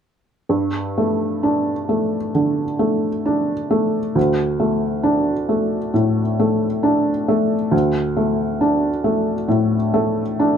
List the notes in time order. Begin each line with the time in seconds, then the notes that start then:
0.49 G2
0.98 A3
1.43 D4
1.89 A3
2.35 D3
2.79 A3
3.26 D4
3.71 A3
4.15 D2
4.60 A3
5.03 D4
5.49 A3
5.94 A2
6.39 A3
6.83 D4
7.28 A3
7.71 D2
8.17 A3
8.61 D4
9.04 A3
9.48 A2
9.94 A3
10.39 D4